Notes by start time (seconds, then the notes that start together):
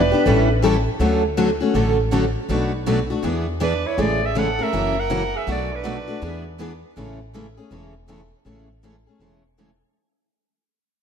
Already playing: E1 D4 B4
0.12 B3 D4 G4
0.25 A1 E3 G3 C#4 E4 A4
0.62 E3 G3 C#4 E4 A4
0.99 D2 D3 F#3 A3 C#4 F#4 A4
1.37 D3 F#3 A3 C#4 F#4 A4
1.60 A3 C#4 F#4
1.74 A1 D3 F#3 A3 C#4 F#4 A4
2.12 D3 F#3 A3 C#4 F#4 A4
2.48 B1 B2 F#3 A3 D4 F#4 B4
2.87 B2 F#3 A3 D4 F#4 B4
3.10 A3 D4 F#4
3.23 E2 E3 B3 D4 G#4 B4
3.60 E3 B3 D4 G#4 B4
3.86 E4 C#5
3.97 A1 C#3 E3 G#3 A3 C#4 E4 G#4 A4 D5
4.23 G#4 E5
4.35 C#3 E3 G#3 A3 C#4 E4 G#4 A4 F#5
4.59 A3 C#4 G#4 A#4 E5
4.73 F#1 C#3 E3 F#3 A#3 C#4 E4 F#4 A#4
4.98 A#4 F#5
5.10 C#3 E3 F#3 A#3 C#4 E4 F#4 A#4
5.35 G#4 E5
5.47 B1 B2 F#3 A3 D4 F#4 B4
5.52 D5
5.73 D4 B4
5.83 B2 F#3 A3 D4 F#4 B4
6.08 A3 D4 F#4
6.21 E2 E3 B3 D4 G#4 B4
6.60 E3 B3 D4 G#4 B4
6.96 A1 C#3 E3 G#3 A3 C#4 E4 G#4 A4
7.34 C#3 E3 G#3 A3 C#4 E4 G#4 A4
7.57 A3 C#4 G#4
7.70 E1 C#3 E3 G#3 A3 C#4 E4 G#4 A4
8.08 C#3 E3 G#3 A3 C#4 E4 G#4 A4
8.45 A1 C#3 E3 G#3 A3 C#4 E4 G#4 A4
8.83 C#3 E3 G#3 A3 C#4 E4 G#4 A4
9.07 A3 C#4 G#4
9.19 E1 C#3 E3 G#3 A3 C#4 E4 G#4 A4
9.58 C#3 E3 G#3 A3 C#4 E4 G#4 A4